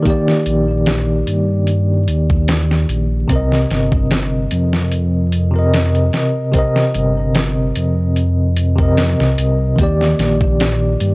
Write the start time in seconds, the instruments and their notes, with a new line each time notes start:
Already playing: tine electric piano D#3 A#3 G4 D5
0.02 tine electric piano D#3 A#3, kick, closed hi-hat
0.07 tine electric piano G4 D5
0.28 snare
0.46 detuned saw bass A#1, closed hi-hat
0.86 snare, closed hi-hat
1.27 detuned saw bass G2, closed hi-hat
1.67 closed hi-hat
2.08 detuned saw bass D#2, closed hi-hat
2.30 kick
2.48 snare, closed hi-hat
2.71 snare
2.89 detuned saw bass A#1, closed hi-hat
3.28 detuned saw bass C2, tine electric piano C3 C4, kick, closed hi-hat
3.33 tine electric piano A#4 D#5
3.52 snare
3.70 detuned saw bass G1, snare, closed hi-hat
3.92 kick
4.11 snare, closed hi-hat
4.51 detuned saw bass F2, closed hi-hat
4.73 snare
4.92 closed hi-hat
5.32 closed hi-hat
5.51 tine electric piano C3 C4
5.56 tine electric piano A#4 D#5
5.73 snare, closed hi-hat
5.95 closed hi-hat
6.13 snare, closed hi-hat
6.52 tine electric piano C3 C4, kick, closed hi-hat
6.56 tine electric piano A#4 D#5
6.76 snare
6.94 detuned saw bass G1, closed hi-hat
7.35 snare, closed hi-hat
7.75 detuned saw bass F2, closed hi-hat
8.16 closed hi-hat
8.57 closed hi-hat
8.75 tine electric piano C3 C4, kick
8.80 tine electric piano A#4 D#5
8.97 snare, closed hi-hat
9.20 detuned saw bass C2, snare
9.38 detuned saw bass C2, closed hi-hat
9.76 detuned saw bass D#2, tine electric piano D#3 A#3, kick, closed hi-hat
9.81 tine electric piano G4 D5
10.01 snare
10.19 detuned saw bass A#1, snare, closed hi-hat
10.41 kick
10.60 snare, closed hi-hat
11.00 detuned saw bass G2, closed hi-hat